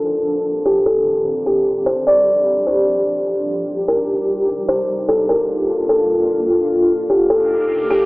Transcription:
<<
  \new Staff \with { instrumentName = "Kalimba" } { \time 4/4 \key ees \lydian \tempo 4 = 149 r4. g'8 a'4. g'8 | r8 c''8 d''4. c''4. | r4. bes'8 r4. c''8 | r8 a'8 bes'4. a'4. |
r4. g'8 a'4. g'8 | }
  \new Staff \with { instrumentName = "Ambient pad" } { \time 4/4 \key ees \lydian << { <bes, g'>1~ | <bes, g'>1 | <c g'>1 | <bes, f'>1 |
<c g'>1 | } \\ { <ees c'>1 | <f d'>1 | <g ees'>1 | <bes d'>1 |
<bes ees'>1 | } >> }
>>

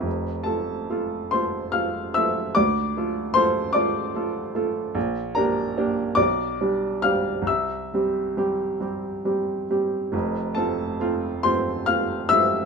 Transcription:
\new Staff \with { instrumentName = "Upright piano" } { \time 6/8 \key f \major \tempo 4. = 47 << { r8 <a' a''>4 <c'' c'''>8 <f'' f'''>8 <e'' e'''>8 | <d'' d'''>4 <c'' c'''>8 <d'' d'''>4. | r8 <bes' bes''>4 <d'' d'''>4 <f'' f'''>8 | <e'' e'''>4. r4. |
r8 <a' a''>4 <c'' c'''>8 <f'' f'''>8 <e'' e'''>8 | } \\ { <f,, f,>8 <a f'>8 <a f' a'>8 <a f' a'>8 <a f' a'>8 <a f' a'>8 | d,8 <a f' a'>8 <a f' a'>8 <a f' a'>8 <a f' a'>8 <a f' a'>8 | bes,,8 <bes d' g'>8 <bes d' g'>8 b,,8 <g d' g'>8 <g d' g'>8 | c,8 <g c' g'>8 <g c' g'>8 <g c' g'>8 <g c' g'>8 <g c' g'>8 |
<f,, f,>8 <a c' f'>8 <a c' f'>8 <a c' f'>8 <a c' f'>8 <a c' f'>8 | } >> }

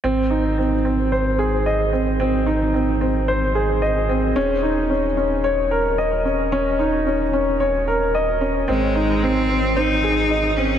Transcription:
<<
  \new Staff \with { instrumentName = "Upright piano" } { \time 4/4 \key aes \mixolydian \tempo 4 = 111 c'8 ees'8 c'8 c'8 c''8 aes'8 ees''8 c'8 | c'8 ees'8 c'8 c'8 c''8 aes'8 ees''8 c'8 | des'8 ees'8 des'8 des'8 des''8 bes'8 ees''8 des'8 | des'8 ees'8 des'8 des'8 des''8 bes'8 ees''8 des'8 |
c'8 ees'8 c'8 c'8 c''8 aes'8 ees''8 c'8 | }
  \new Staff \with { instrumentName = "Cello" } { \time 4/4 \key aes \mixolydian r1 | r1 | r1 | r1 |
aes4 c'4 ees'4. des'8 | }
  \new Staff \with { instrumentName = "Sub bass" } { \clef bass \time 4/4 \key aes \mixolydian aes,,1~ | aes,,1 | ees,,1~ | ees,,1 |
aes,,1 | }
>>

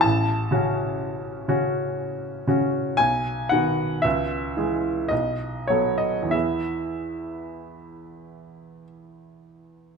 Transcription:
<<
  \new Staff \with { instrumentName = "Grand piano" } { \time 3/4 \key e \major \tempo 4 = 57 a''2~ a''8 r8 | gis''8 fis''8 e''4 dis''8 cis''16 dis''16 | e''2 r4 | }
  \new Staff \with { instrumentName = "Grand piano" } { \time 3/4 \key e \major a,,8 <cis cis' fis'>4 <cis cis' fis'>4 <cis cis' fis'>8 | b,,8 <dis b fis'>8 cis,8 <e gis gis'>8 b,,8 <fis b a'>8 | <e, e b gis'>2. | }
>>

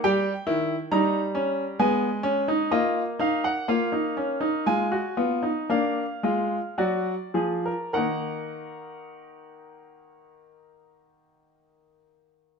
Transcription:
<<
  \new Staff \with { instrumentName = "Grand piano" } { \time 4/4 \key ees \minor \tempo 4 = 57 << { g''4 bes''4 aes''4 ees''8 f''16 ges''16 | f''4 aes''4 f''4 d''4 | <bes ees' ges''>1 | } \\ { g'8 fes'8 ees'8 des'8 ces'8 des'16 ees'16 f'8 ees'8 | f'16 ees'16 des'16 ees'16 f'16 ges'16 f'16 ees'16 d'8 f'8 ges'8 aes'16 bes'16 | bes'1 | } >> }
  \new Staff \with { instrumentName = "Grand piano" } { \clef bass \time 4/4 \key ees \minor g8 ees8 g4 aes4 bes4 | bes4 aes8 ces'8 bes8 aes8 ges8 f8 | ees1 | }
>>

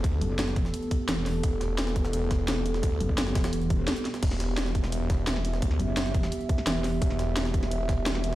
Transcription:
<<
  \new Staff \with { instrumentName = "Analog synth pad" } { \time 4/4 \key e \minor \tempo 4 = 172 << { a'1~ | a'1~ | a'1 | e''1~ |
e''1~ | e''1 | } \\ { <b g'>1~ | <b g'>1~ | <b g'>1~ | <b g'>1~ |
<b g'>1~ | <b g'>1 | } >> }
  \new Staff \with { instrumentName = "Wobble bass" } { \clef bass \time 4/4 \key e \minor r8 fis,,4. r4 e,,4 | r1 | r8 fis,,4. e,,4 r4 | r1 |
r8 fis,,4. r4 e,,4 | r1 | }
  \new Staff \with { instrumentName = "Detuned saw bass" } { \clef bass \time 4/4 \key e \minor d,8 r2. r8 | e,,2~ e,,8 e,,4. | d,8 r2. r8 | e,,2~ e,,8 e,,4. |
d,8 r2. r8 | e,,2~ e,,8 e,,4. | }
  \new DrumStaff \with { instrumentName = "Drums" } \drummode { \time 4/4 <hh bd>8 hh8 <hh sn>16 sn16 <hh bd>16 sn16 hh16 hh16 <hh bd>8 <hh sn>8 <hh hho sn>8 | <hh bd>8 <hh sn>8 <hh sn>16 sn16 <hh bd>16 sn16 hh8 <hh bd sn>8 <hh sn>8 hh16 sn16 | <hh bd>8 hh16 bd16 <hh sn>16 sn16 <hh bd sn>16 <hh sn>16 hh16 hh16 <hh bd>8 <hh sn>16 hh16 <hh sn>16 <hh sn>16 | <cymc hh bd>16 sn16 <hh sn>8 <hh sn>16 sn16 <hh bd>16 sn16 hh8 <hh bd sn>8 <hh sn>16 sn16 hh16 sn16 |
<hh bd>16 sn16 hh8 <hh sn>16 sn16 <hh bd>16 sn16 hh16 hh16 <hh bd>16 sn16 <hh sn>8 <hh hho sn>8 | <hh bd>16 sn16 <hh sn>8 <hh sn>16 sn16 <hh bd>16 sn16 hh8 <hh bd sn>8 <hh sn>16 sn16 hh8 | }
>>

